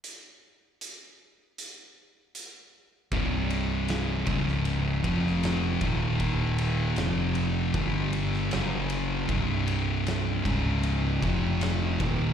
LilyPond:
<<
  \new Staff \with { instrumentName = "Distorted electric guitar" } { \clef bass \time 4/4 \key c \minor \tempo 4 = 78 r1 | <c, g, c>4. <des, aes, des>4 <f, c f>4 <ees, bes, ees>8~ | <ees, bes, ees>4 <f, c f>4 <g, d g>4 <fis, cis fis>4 | <c, g, c>4. <des, aes, des>4 <f, c f>4 <ees, bes, ees>8 | }
  \new Staff \with { instrumentName = "Distorted electric guitar" } { \clef bass \time 4/4 \key c \minor r1 | <c, g, c>4. <des, aes, des>4 <f, c f>4 <ees, bes, ees>8~ | <ees, bes, ees>4 <f, c f>4 <g, d g>4 <fis, cis fis>4 | <c, g, c>4. <des, aes, des>4 <f, c f>4 <ees, bes, ees>8 | }
  \new Staff \with { instrumentName = "Fingered electric bass" } { \clef bass \time 4/4 \key c \minor r1 | c,,4. des,,4 f,,4 ees,,8~ | ees,,4 f,,4 g,,4 fis,,4 | c,,4. des,,4 f,,4 ees,,8 | }
  \new DrumStaff \with { instrumentName = "Drums" } \drummode { \time 4/4 hh4 hh4 hh4 hh4 | <bd cymr>8 cymr8 <cymr sn>8 <bd cymr>16 sn16 cymr8 <bd cymr>16 sn16 <cymr sn>8 <bd cymr>8 | <bd cymr>8 cymr8 <cymr sn>8 cymr8 <bd cymr>8 cymr16 sn16 <cymr sn>8 cymr8 | <bd cymr>8 cymr8 <cymr sn>8 <bd cymr>8 cymr8 <bd cymr>8 <cymr sn>8 <bd cymr>8 | }
>>